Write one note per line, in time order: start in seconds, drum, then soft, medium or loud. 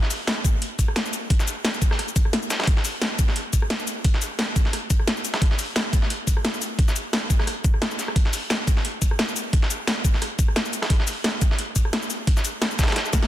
0.03 snare medium
0.10 closed hi-hat medium
0.10 open hi-hat medium
0.10 shaker medium
0.27 snare loud
0.27 closed hi-hat medium
0.45 kick loud
0.45 closed hi-hat medium
0.45 shaker medium
0.62 closed hi-hat loud
0.62 closed hi-hat medium
0.79 kick medium
0.79 closed hi-hat medium
0.79 shaker medium
0.88 cross-stick soft
0.96 snare loud
0.96 closed hi-hat medium
1.05 shaker soft
1.13 closed hi-hat medium
1.13 shaker medium
1.30 kick loud
1.30 closed hi-hat medium
1.30 closed hi-hat loud
1.39 snare medium
1.39 shaker soft
1.48 closed hi-hat medium
1.48 shaker medium
1.65 snare loud
1.65 closed hi-hat loud
1.65 closed hi-hat medium
1.74 shaker soft
1.82 kick loud
1.82 closed hi-hat medium
1.82 shaker medium
1.91 cross-stick medium
1.91 snare soft
1.99 cross-stick soft
1.99 closed hi-hat loud
1.99 closed hi-hat medium
2.08 shaker soft
2.16 kick loud
2.16 closed hi-hat medium
2.16 shaker medium
2.25 cross-stick soft
2.33 snare loud
2.33 closed hi-hat medium
2.42 shaker soft
2.50 snare loud
2.50 closed hi-hat medium
2.50 shaker medium
2.60 cross-stick medium
2.60 snare medium
2.60 closed hi-hat medium
2.64 snare medium
2.64 closed hi-hat medium
2.67 kick loud
2.67 closed hi-hat loud
2.67 closed hi-hat medium
2.77 snare soft
2.85 closed hi-hat medium
2.85 open hi-hat medium
2.85 shaker medium
3.02 snare loud
3.02 closed hi-hat loud
3.02 closed hi-hat medium
3.19 kick loud
3.19 closed hi-hat medium
3.19 shaker medium
3.28 snare soft
3.36 closed hi-hat loud
3.36 closed hi-hat medium
3.53 kick medium
3.53 closed hi-hat medium
3.53 shaker medium
3.62 cross-stick soft
3.70 snare loud
3.70 closed hi-hat loud
3.70 closed hi-hat medium
3.79 shaker soft
3.87 closed hi-hat medium
3.87 shaker medium
4.04 kick loud
4.04 closed hi-hat loud
4.14 snare medium
4.22 closed hi-hat medium
4.22 shaker medium
4.39 snare loud
4.39 closed hi-hat loud
4.39 closed hi-hat medium
4.56 kick loud
4.56 closed hi-hat medium
4.56 shaker medium
4.65 snare soft
4.73 cross-stick soft
4.73 closed hi-hat medium
4.90 kick loud
4.90 closed hi-hat medium
4.90 shaker medium
5.00 cross-stick soft
5.07 snare loud
5.07 closed hi-hat medium
5.17 shaker soft
5.25 closed hi-hat medium
5.25 shaker medium
5.34 cross-stick medium
5.34 snare loud
5.34 closed hi-hat medium
5.42 kick loud
5.42 closed hi-hat medium
5.51 snare medium
5.59 closed hi-hat medium
5.59 open hi-hat medium
5.59 shaker medium
5.76 snare loud
5.76 closed hi-hat medium
5.93 kick loud
5.93 closed hi-hat medium
5.93 shaker medium
6.02 snare soft
6.10 closed hi-hat medium
6.27 kick medium
6.27 closed hi-hat medium
6.27 shaker medium
6.37 cross-stick soft
6.45 snare loud
6.45 closed hi-hat medium
6.54 shaker soft
6.62 closed hi-hat medium
6.62 shaker medium
6.79 kick loud
6.79 closed hi-hat medium
6.88 snare medium
6.88 shaker soft
6.96 closed hi-hat medium
6.96 shaker medium
7.13 snare loud
7.13 closed hi-hat medium
7.30 kick loud
7.30 closed hi-hat medium
7.30 shaker medium
7.39 cross-stick medium
7.39 snare soft
7.47 cross-stick soft
7.47 closed hi-hat medium
7.64 kick loud
7.64 closed hi-hat medium
7.64 shaker medium
7.74 cross-stick soft
7.82 snare loud
7.82 closed hi-hat medium
7.91 shaker soft
7.99 snare soft
7.99 closed hi-hat medium
7.99 shaker medium
8.08 cross-stick soft
8.16 kick loud
8.16 closed hi-hat medium
8.25 snare soft
8.33 closed hi-hat medium
8.33 open hi-hat medium
8.33 shaker medium
8.50 snare loud
8.50 closed hi-hat medium
8.67 kick loud
8.67 closed hi-hat medium
8.67 shaker medium
8.77 snare soft
8.85 closed hi-hat medium
9.02 kick medium
9.02 closed hi-hat medium
9.02 shaker medium
9.11 cross-stick soft
9.19 snare loud
9.19 closed hi-hat medium
9.28 shaker soft
9.36 closed hi-hat medium
9.36 shaker medium
9.53 kick loud
9.53 closed hi-hat medium
9.62 snare medium
9.70 closed hi-hat medium
9.70 shaker medium
9.87 snare loud
9.87 closed hi-hat medium
10.04 kick loud
10.04 closed hi-hat medium
10.04 shaker medium
10.14 snare soft
10.22 cross-stick soft
10.22 closed hi-hat medium
10.39 kick loud
10.39 closed hi-hat medium
10.39 shaker medium
10.48 cross-stick soft
10.56 snare loud
10.56 closed hi-hat medium
10.65 shaker soft
10.73 closed hi-hat medium
10.73 shaker medium
10.82 cross-stick soft
10.82 snare loud
10.82 closed hi-hat medium
10.90 kick loud
10.90 closed hi-hat loud
10.90 closed hi-hat medium
11.00 snare medium
11.07 closed hi-hat medium
11.07 open hi-hat medium
11.07 shaker medium
11.24 snare loud
11.24 closed hi-hat loud
11.24 closed hi-hat medium
11.41 kick loud
11.41 closed hi-hat medium
11.41 shaker medium
11.51 snare soft
11.59 closed hi-hat loud
11.59 closed hi-hat medium
11.76 kick medium
11.76 closed hi-hat medium
11.76 shaker medium
11.85 cross-stick soft
11.93 snare loud
11.93 closed hi-hat loud
11.93 closed hi-hat medium
12.02 shaker soft
12.10 closed hi-hat medium
12.10 shaker medium
12.27 kick loud
12.27 closed hi-hat loud
12.27 closed hi-hat medium
12.37 snare medium
12.37 shaker soft
12.45 closed hi-hat medium
12.45 shaker medium
12.62 snare loud
12.62 closed hi-hat loud
12.62 closed hi-hat medium
12.71 shaker soft
12.79 kick loud
12.79 snare medium
12.79 closed hi-hat medium
12.79 shaker medium
12.83 snare medium
12.83 closed hi-hat medium
12.88 cross-stick medium
12.88 snare medium
12.88 closed hi-hat medium
12.92 cross-stick soft
12.92 snare medium
12.92 closed hi-hat medium
12.96 snare loud
12.96 closed hi-hat loud
12.96 closed hi-hat medium
13.05 shaker soft
13.13 kick loud
13.13 snare medium
13.13 closed hi-hat medium
13.13 shaker medium
13.23 snare medium
13.23 snare soft